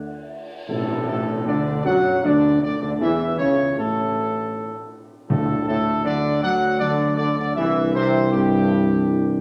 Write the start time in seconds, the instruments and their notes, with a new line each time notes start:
Already playing: tuba D2, french horn section A4 D5, trumpet section D5 F#5
0.68 tuba A1, trombone section A2, french horn section A3, trumpet section A4, tam-tam
1.07 tuba A1, trombone section A2, french horn section A3, trumpet section A4
1.46 tuba D2, trombone section D3, french horn section D4, trumpet section D5
1.84 tuba F#2, trombone section F#3, french horn section F#4, trumpet section F#5
2.23 tuba D2, trombone section D3, french horn section D4, trumpet section D5
2.61 tuba D2, trombone section D3, french horn section D4, trumpet section D5
2.81 tuba D2, trombone section D3, french horn section D4, trumpet section D5
3.00 tuba E2, trombone section E3, french horn section E4, trumpet section E5
3.38 tuba C#2, trombone section C#3, french horn section C#4, trumpet section C#5
3.77 tuba A1, trombone section A2, french horn section A3, trumpet section A4
5.29 tuba D2, trombone section A2, timpani D3, french horn section F#3 D4, trumpet section A4
5.66 trombone section A2, trumpet section A4
6.05 trombone section D3, french horn section F#3 D4, trumpet section D5
6.42 trombone section F#3, trumpet section F#5
6.79 trombone section D3, french horn section F#3 D4, trumpet section D5
7.17 trombone section D3, trumpet section D5
7.37 trombone section D3, trumpet section D5
7.56 tuba C2, french horn section E3 D4, trombone section E3, trumpet section E5
7.93 trombone section C3, trumpet section C5
8.31 trombone section G2, french horn section E3 D4, trumpet section G4